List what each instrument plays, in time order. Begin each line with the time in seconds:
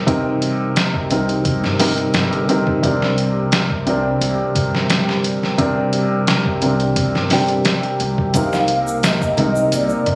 Already playing: upright bass G1, upright piano C3 C4 D#4 A#4, ambient pad G3 G4
0.07 upright piano C3 C4 D#4 A#4, kick, closed hi-hat
0.42 closed hi-hat
0.76 snare, closed hi-hat
0.94 kick
1.11 upright bass C2, upright piano C3 C4 D#4 A#4, closed hi-hat
1.29 closed hi-hat
1.45 kick, closed hi-hat
1.64 upright bass G1, snare
1.79 upright piano C3 C4 D#4 A#4, snare, open hi-hat
1.98 closed hi-hat
2.14 upright bass G1, snare, closed hi-hat
2.33 closed hi-hat
2.49 upright piano C3 C4 D#4 A#4, closed hi-hat
2.67 upright bass C2, kick
2.82 upright piano C3 C4 D4 A#4, kick, closed hi-hat
3.02 snare
3.18 closed hi-hat
3.52 snare, closed hi-hat
3.70 kick
3.86 upright bass C2, upright piano C3 C4 D4 A#4, closed hi-hat
4.21 upright bass C2, closed hi-hat
4.55 upright bass G1, kick, closed hi-hat
4.75 snare
4.90 snare, closed hi-hat
5.09 snare
5.24 closed hi-hat
5.43 snare
5.58 upright piano C3 C4 D4 A#4, kick, closed hi-hat
5.93 closed hi-hat
6.27 snare, closed hi-hat
6.46 kick
6.62 upright bass C2, upright piano C3 C4 D4 A#4, closed hi-hat
6.80 closed hi-hat
6.96 kick, closed hi-hat
7.15 upright bass G1, snare
7.30 upright piano C3 C4 D4 G4, snare, open hi-hat
7.48 closed hi-hat
7.65 snare, closed hi-hat
7.83 closed hi-hat
8.00 upright bass C2, closed hi-hat
8.18 kick
8.34 upright piano C3 C4 D#4 A#4, ambient pad A#3 A#4, soft synth lead F5, kick, closed hi-hat, shaker
8.53 snare, shaker
8.68 closed hi-hat
8.87 shaker
9.03 soft synth lead D#5, snare, closed hi-hat, shaker
9.21 kick, shaker
9.37 upright bass C2, upright piano C3 C4 D#4 A#4, closed hi-hat, low conga
9.56 shaker
9.72 upright bass C2, soft synth lead D5, closed hi-hat, shaker
9.89 shaker
10.06 upright bass G1, kick, closed hi-hat